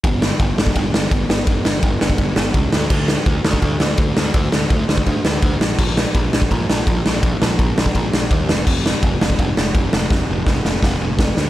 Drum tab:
CC |----------------|----------------|x---------------|----------------|
RD |x---x---x---x---|x---x---x---x---|----x---x---x---|x---x---x---x---|
SD |--o---o---o---o-|--o---o---o---o-|--o---o---o---o-|--o---o---o---o-|
BD |o---o--oo---o---|o---o--oo---o---|o---o--oo---o---|o---o--oo---o---|

CC |x---------------|----------------|x---------------|----------------|
RD |----x---x---x---|x---x---x---x---|----x---x---x---|----------------|
SD |--o---o---o---o-|--o---o---o---o-|--o---o---o---o-|o---o-o-o---o-o-|
BD |o---o--oo---o---|o---o--oo---o---|o---o--oo---o---|o---o---o---o---|